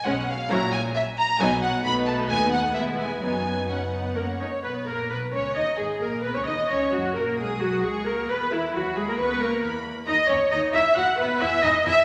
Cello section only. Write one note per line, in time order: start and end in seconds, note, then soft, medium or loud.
0.06 0.43 B2 medium
0.50 0.88 A#2 medium
1.40 1.77 B2 medium
1.85 2.26 B2 medium
2.29 2.74 D#2 medium
2.75 3.21 E2 medium
3.22 4.14 F#2 soft
4.16 4.24 F#2 soft
4.16 4.24 A#3 soft
4.41 4.49 C#4 soft
4.64 4.87 B3 medium
4.87 5.10 A#3 soft
5.10 5.18 B3 medium
5.32 5.55 C#4 soft
5.56 5.79 D#4 medium
5.78 6.01 G#3 soft
6.01 6.24 A#3 soft
6.24 6.29 B3 medium
6.35 6.40 C#4 soft
6.48 6.56 D#4 medium
6.70 6.93 C#4 medium
6.93 7.16 F#3 medium
7.16 7.38 A#3 medium
7.38 7.61 G#3 medium
7.61 7.83 F#3 medium
7.83 8.06 G#3 medium
8.06 8.29 A#3 medium
8.29 8.51 B3 medium
8.52 8.74 E3 medium
8.74 8.96 F#3 medium
8.97 9.08 G#3 medium
9.08 9.19 A#3 medium
9.19 9.41 B3 medium
9.41 9.63 A#3 medium
10.07 10.15 D#4 medium
10.29 10.37 C#4 medium
10.51 10.73 D#4 medium
10.74 10.82 E4 medium
10.96 11.04 F#4 medium
11.19 11.41 B3 medium
11.40 11.48 E4 loud
11.63 11.71 D#4 medium
11.86 11.94 E4 medium